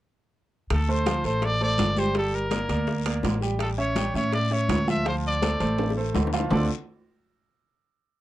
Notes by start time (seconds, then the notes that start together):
0.70 D2 A4, high bongo, high conga, high timbale, long guiro
0.88 A3 A4 C5, high conga
1.06 F3 F4 F5, high bongo, high conga, high timbale, low timbale, short guiro
1.24 A1 A3 A4 C5, high bongo, short guiro
1.42 D5, high bongo, high conga, high timbale, long guiro
1.60 A3 A4 C5 D5, high bongo, high conga
1.78 G1, high bongo, low bongo, high conga, high timbale, low timbale, short guiro
1.96 G3 G4 C5 G5, high bongo, high conga, short guiro
2.15 G3 G4 A4 G5, high bongo, high conga, high timbale, long guiro
2.33 A#4, high conga
2.51 A#3 A#4 D5, high bongo, high conga, high timbale, low timbale, short guiro
2.69 D2 A#3 A#4 D5, high bongo, high conga, high timbale, short guiro
2.87 high bongo, high conga, long guiro
3.06 A#3 A#4 D5, high bongo, high conga, high timbale
3.23 A1, high bongo, low bongo, high conga, high timbale, low timbale, short guiro
3.41 G3 G4 G5, high bongo, short guiro
3.59 A4, high bongo, high conga, high timbale, long guiro
3.78 C#4 C#5 E5, high conga
3.96 G3 G4 G5, high bongo, high conga, high timbale, low timbale, short guiro
4.14 A2 C#4 C#5 E5, high bongo, short guiro
4.33 D5, high bongo, high conga, high timbale, long guiro
4.51 C#4 C#5 E5, high bongo, high conga
4.68 D2, high bongo, low bongo, high conga, high timbale, low timbale, short guiro
4.87 F3 F4 E5 F5, high bongo, high conga, short guiro
5.06 F3 F4 C5 F5, high bongo, high timbale, long guiro
5.24 D5, high conga
5.42 A3 A4 C5, high bongo, high conga, high timbale, low timbale, short guiro
5.60 A1 A3 A4 C5, high bongo, high conga, high timbale, short guiro
5.78 high bongo, high conga, high timbale, long guiro
5.90 high bongo
5.96 A3 A4 C5, high conga
6.14 D2, low bongo, high conga, low timbale, short guiro
6.27 low bongo
6.33 F3 F4 F5, low timbale, short guiro
6.40 low bongo
6.50 D2 D3 A3 C4 D4 F4 A4 D5, low bongo, low conga, low timbale, long guiro